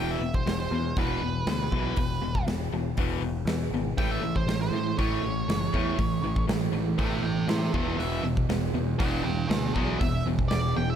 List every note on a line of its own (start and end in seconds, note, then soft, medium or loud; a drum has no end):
0.00 0.16 E1 medium
0.00 0.20 E2 medium
0.00 0.20 B2 medium
0.00 0.20 E3 loud
0.00 0.11 G5 medium
0.11 0.34 E5 medium
0.20 0.41 E1 medium
0.20 0.44 E2 medium
0.20 0.44 B2 medium
0.34 0.59 C5 medium
0.34 kick medium
0.46 0.66 E1 medium
0.46 0.69 E2 medium
0.46 0.69 B2 medium
0.46 snare loud
0.46 open hi-hat soft
0.60 0.96 C5 medium
0.71 0.92 E2 medium
0.71 0.95 E2 medium
0.71 0.95 B2 medium
0.96 1.17 E1 loud
0.96 1.21 E2 medium
0.96 1.21 B2 medium
0.96 1.21 E3 medium
0.96 2.44 B4 medium
0.96 kick loud
0.96 open hi-hat soft
1.21 1.42 E1 medium
1.21 1.45 E2 medium
1.21 1.45 B2 medium
1.47 1.67 D2 medium
1.47 1.70 E2 medium
1.47 1.71 B2 medium
1.47 snare loud
1.47 open hi-hat medium
1.72 1.92 B1 medium
1.72 1.96 E2 medium
1.72 1.97 B2 loud
1.72 1.97 E3 medium
1.72 kick medium
1.96 2.17 E1 loud
1.96 2.20 E2 medium
1.96 2.20 B2 medium
1.96 kick loud
1.96 open hi-hat medium
2.21 2.42 E1 medium
2.21 2.45 E2 medium
2.21 2.45 B2 medium
2.35 kick medium
2.47 2.67 E1 medium
2.47 2.70 E2 medium
2.47 2.70 B2 medium
2.47 snare loud
2.47 open hi-hat soft
2.72 2.92 E1 medium
2.72 2.95 E2 medium
2.72 2.95 B2 medium
2.97 3.17 E1 loud
2.97 3.21 E2 medium
2.97 3.21 B2 medium
2.97 3.21 E3 medium
2.97 kick loud
2.97 open hi-hat medium
3.21 3.42 E1 medium
3.21 3.45 E2 medium
3.21 3.45 B2 medium
3.45 3.66 E2 loud
3.45 3.71 E2 medium
3.45 3.71 B2 medium
3.45 snare loud
3.45 open hi-hat medium
3.70 3.92 G#1 medium
3.70 3.96 E2 medium
3.70 3.96 B2 medium
3.98 4.18 A1 medium
3.98 4.22 A2 medium
3.98 4.22 E3 medium
3.98 4.22 A3 loud
3.98 4.11 G5 loud
3.98 kick loud
3.98 open hi-hat medium
4.11 4.35 E5 medium
4.22 4.42 A1 medium
4.22 4.45 A2 medium
4.22 4.45 E3 medium
4.36 4.60 C5 medium
4.36 kick medium
4.47 4.67 A1 medium
4.47 4.71 A2 medium
4.47 4.71 E3 medium
4.47 snare loud
4.47 open hi-hat medium
4.62 4.98 C5 loud
4.71 4.92 A2 medium
4.71 4.96 A2 medium
4.71 4.96 E3 medium
4.98 5.18 A1 loud
4.98 5.22 A2 medium
4.98 5.22 E3 loud
4.98 5.23 A3 loud
4.98 6.45 C#5 medium
4.98 kick loud
4.98 open hi-hat medium
5.21 5.42 A1 medium
5.21 5.46 A2 medium
5.21 5.46 E3 medium
5.47 5.68 F#1 medium
5.47 5.71 A2 medium
5.47 5.71 E3 medium
5.47 snare loud
5.47 open hi-hat medium
5.73 5.94 E2 medium
5.73 5.97 A2 medium
5.73 5.97 E3 medium
5.73 5.97 A3 medium
5.73 kick medium
5.98 6.18 A1 loud
5.98 6.21 A2 medium
5.98 6.21 E3 medium
5.98 kick loud
5.98 open hi-hat medium
6.21 6.42 A1 medium
6.21 6.46 A2 medium
6.21 6.46 E3 medium
6.36 kick medium
6.47 6.68 A1 medium
6.47 6.71 A2 medium
6.47 6.71 E3 medium
6.47 snare loud
6.47 open hi-hat medium
6.72 6.93 A1 medium
6.72 6.96 A2 medium
6.72 6.96 E3 medium
6.98 7.19 A1 loud
6.98 7.21 A2 medium
6.98 7.22 E3 loud
6.98 7.22 A3 loud
6.98 7.23 E5 medium
6.98 7.23 G5 medium
6.98 kick loud
6.98 open hi-hat medium
7.23 7.43 A1 medium
7.23 7.46 A2 medium
7.23 7.46 E3 medium
7.23 7.47 E5 medium
7.23 7.49 G5 medium
7.47 7.68 A2 medium
7.47 7.71 A2 medium
7.47 7.71 E3 medium
7.47 7.72 G4 medium
7.47 7.73 E5 loud
7.47 snare loud
7.47 open hi-hat medium
7.73 7.94 E1 loud
7.73 7.97 E2 medium
7.73 7.98 B2 loud
7.73 7.98 E3 loud
7.73 7.97 G#4 medium
7.73 7.99 E5 loud
7.73 kick medium
7.98 8.19 E1 loud
7.98 8.22 E2 medium
7.98 8.23 B2 medium
7.98 8.23 E3 loud
7.98 8.24 E5 medium
7.98 open hi-hat medium
8.24 8.44 E1 medium
8.24 8.47 E2 medium
8.24 8.47 B2 medium
8.37 kick medium
8.49 8.70 E1 medium
8.49 8.72 E2 medium
8.49 8.72 B2 medium
8.49 snare loud
8.49 open hi-hat medium
8.74 8.94 E2 medium
8.74 8.97 E2 medium
8.74 8.97 B2 medium
8.99 9.20 E1 loud
8.99 9.23 E2 loud
8.99 9.23 B2 medium
8.99 9.24 E3 medium
8.99 9.23 B4 medium
8.99 9.23 G5 medium
8.99 kick loud
8.99 open hi-hat medium
9.24 9.45 E1 medium
9.24 9.47 E2 medium
9.24 9.47 B2 medium
9.24 9.48 B4 medium
9.24 9.49 G5 loud
9.48 9.70 D2 loud
9.48 9.73 E2 medium
9.48 9.73 B2 medium
9.48 9.72 G#4 medium
9.48 9.72 E5 medium
9.48 snare loud
9.48 open hi-hat medium
9.73 9.95 B1 medium
9.73 9.99 E2 loud
9.73 9.99 B2 loud
9.73 10.00 E3 loud
9.73 9.98 G#4 medium
9.73 9.98 E5 medium
9.73 kick medium
10.00 10.21 E1 medium
10.00 10.24 E2 medium
10.00 10.24 B2 medium
10.00 10.25 E5 loud
10.00 kick loud
10.00 open hi-hat medium
10.26 10.46 E1 medium
10.26 10.49 E2 medium
10.26 10.49 B2 medium
10.39 kick medium
10.48 10.72 E1 medium
10.48 10.74 E2 medium
10.48 10.74 B2 medium
10.48 10.74 D5 loud
10.48 snare loud
10.48 open hi-hat soft
10.76 10.96 E1 medium
10.76 10.96 E2 medium
10.76 10.96 B2 medium
10.76 10.89 G5 loud
10.90 10.96 E5 medium